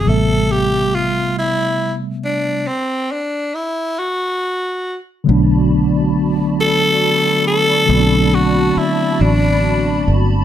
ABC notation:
X:1
M:6/8
L:1/8
Q:3/8=46
K:Am
V:1 name="Analog synth pad"
z6 | z6 | [K:Bphr] [Fdab]6- | [Fdab]6 |]
V:2 name="Tenor saxophone"
A G F E z D | C D E ^F2 z | [K:Bphr] z3 A2 A- | A F E D2 z |]
V:3 name="Tine electric piano"
[C,G,A,B,e]6 | z6 | [K:Bphr] [D,F,A,B,D]6 | [D,F,A,B,CD]6 |]
V:4 name="Fingered electric bass" clef=bass
A,,,6 | z6 | [K:Bphr] B,,,6 | B,,,2 z A,,,2 G,,, |]